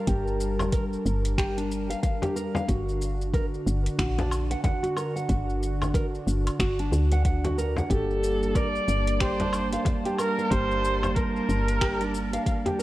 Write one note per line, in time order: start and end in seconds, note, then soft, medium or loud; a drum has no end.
0.00 2.64 G3 medium
0.00 12.83 D4 medium
0.00 2.64 A#4 medium
0.00 2.64 A5 medium
0.07 0.97 G1 medium
0.07 0.71 G4 medium
0.07 kick loud
0.07 closed hi-hat medium
0.07 shaker soft
0.28 shaker soft
0.40 shaker medium
0.59 frame drum medium
0.59 low woodblock medium
0.59 shaker soft
0.72 0.84 A#4 loud
0.72 kick loud
0.72 closed hi-hat medium
0.72 shaker soft
0.93 shaker soft
1.05 1.95 G1 medium
1.05 shaker medium
1.25 closed hi-hat soft
1.25 shaker soft
1.38 1.56 G4 loud
1.38 finger snap medium
1.38 kick loud
1.38 closed hi-hat medium
1.38 shaker soft
1.57 1.70 D4 medium
1.57 closed hi-hat soft
1.57 shaker soft
1.71 shaker medium
1.90 2.01 F5 medium
1.90 closed hi-hat soft
1.90 shaker soft
2.03 2.21 F5 medium
2.03 kick loud
2.03 closed hi-hat medium
2.03 shaker soft
2.22 2.34 G4 loud
2.22 closed hi-hat soft
2.22 frame drum medium
2.22 shaker soft
2.36 2.53 A#4 medium
2.36 shaker medium
2.55 2.67 F5 medium
2.55 frame drum loud
2.55 shaker soft
2.68 3.58 G1 medium
2.68 7.86 D3 medium
2.68 7.86 F#4 medium
2.68 3.32 F#4 medium
2.68 kick loud
2.68 closed hi-hat medium
2.68 shaker soft
2.89 shaker soft
3.02 shaker medium
3.21 shaker soft
3.34 3.45 A#4 loud
3.34 kick loud
3.34 closed hi-hat medium
3.34 shaker soft
3.54 shaker soft
3.66 3.88 G1 medium
3.66 shaker medium
3.86 closed hi-hat soft
3.86 shaker soft
3.99 4.56 A#1 medium
3.99 4.17 F#4 loud
3.99 finger snap medium
3.99 kick loud
3.99 closed hi-hat medium
3.99 shaker soft
4.18 4.31 D4 medium
4.18 closed hi-hat soft
4.18 frame drum loud
4.18 shaker soft
4.31 low woodblock medium
4.31 shaker medium
4.51 4.63 F#5 medium
4.51 closed hi-hat soft
4.51 shaker soft
4.64 4.82 F#5 medium
4.64 kick loud
4.64 closed hi-hat medium
4.64 frame drum medium
4.64 shaker soft
4.83 4.95 F#4 medium
4.83 closed hi-hat soft
4.83 shaker soft
4.97 5.14 A#4 medium
4.97 low woodblock medium
4.97 shaker medium
5.16 5.28 F#5 medium
5.16 shaker soft
5.29 6.19 G1 medium
5.29 5.93 F#4 medium
5.29 kick loud
5.29 closed hi-hat medium
5.29 shaker soft
5.50 shaker soft
5.63 shaker medium
5.82 frame drum medium
5.82 low woodblock medium
5.82 shaker soft
5.94 6.06 A#4 loud
5.94 kick loud
5.94 closed hi-hat medium
5.94 shaker soft
6.15 shaker soft
6.27 6.49 G1 medium
6.27 shaker medium
6.47 closed hi-hat soft
6.47 low woodblock medium
6.47 shaker soft
6.59 6.91 G1 medium
6.59 6.78 F#4 loud
6.59 finger snap medium
6.59 kick loud
6.59 closed hi-hat medium
6.59 shaker soft
6.79 6.92 D4 medium
6.79 closed hi-hat soft
6.79 shaker soft
6.92 7.82 D2 loud
6.92 shaker medium
7.12 7.24 F#5 medium
7.12 closed hi-hat soft
7.12 shaker soft
7.25 7.44 F#5 medium
7.25 kick loud
7.25 closed hi-hat medium
7.25 shaker soft
7.44 7.56 F#4 loud
7.44 closed hi-hat soft
7.44 frame drum medium
7.44 shaker soft
7.58 7.75 A#4 medium
7.58 shaker medium
7.76 7.89 F#5 medium
7.76 frame drum medium
7.76 shaker soft
7.90 8.80 G1 loud
7.90 12.83 G3 medium
7.90 12.83 A#3 medium
7.90 8.54 G4 medium
7.90 8.57 A4 loud
7.90 12.83 A5 medium
7.90 kick loud
7.90 closed hi-hat medium
7.90 shaker soft
8.11 shaker soft
8.24 shaker medium
8.43 shaker soft
8.55 8.67 A#4 loud
8.55 9.22 D5 loud
8.55 kick loud
8.55 closed hi-hat medium
8.55 shaker soft
8.76 shaker soft
8.88 9.78 G1 medium
8.88 shaker medium
9.07 closed hi-hat soft
9.07 shaker soft
9.20 9.39 G4 loud
9.20 9.86 C5 loud
9.20 finger snap medium
9.20 kick loud
9.20 closed hi-hat medium
9.20 shaker soft
9.40 9.53 D4 medium
9.40 closed hi-hat soft
9.40 frame drum medium
9.40 shaker soft
9.53 low woodblock medium
9.53 shaker medium
9.73 9.85 F5 medium
9.73 closed hi-hat soft
9.73 shaker soft
9.85 10.04 F5 medium
9.85 kick loud
9.85 closed hi-hat medium
9.85 frame drum medium
9.85 shaker soft
10.05 10.17 G4 loud
10.05 closed hi-hat soft
10.05 shaker soft
10.18 10.52 A#4 loud
10.18 10.36 A#4 medium
10.18 low woodblock medium
10.18 shaker medium
10.38 10.50 F5 medium
10.38 shaker soft
10.51 11.41 G1 medium
10.51 11.15 G4 medium
10.51 11.17 C5 loud
10.51 kick loud
10.51 closed hi-hat medium
10.51 shaker soft
10.71 shaker soft
10.85 shaker medium
11.03 frame drum medium
11.03 low woodblock medium
11.03 shaker soft
11.15 12.46 A#4 loud
11.15 11.27 A#4 loud
11.15 kick loud
11.15 closed hi-hat medium
11.15 shaker soft
11.36 shaker soft
11.49 12.38 G1 medium
11.49 shaker medium
11.68 closed hi-hat soft
11.68 shaker soft
11.81 12.00 G4 loud
11.81 finger snap medium
11.81 kick loud
11.81 closed hi-hat medium
11.81 shaker soft
12.01 12.13 D4 medium
12.01 closed hi-hat soft
12.01 shaker soft
12.15 shaker medium
12.34 12.45 F5 medium
12.34 closed hi-hat soft
12.34 shaker soft
12.47 12.65 F5 medium
12.47 kick loud
12.47 closed hi-hat medium
12.47 shaker soft
12.66 12.78 G4 loud
12.66 closed hi-hat soft
12.66 frame drum medium
12.66 shaker soft
12.79 12.83 A#4 medium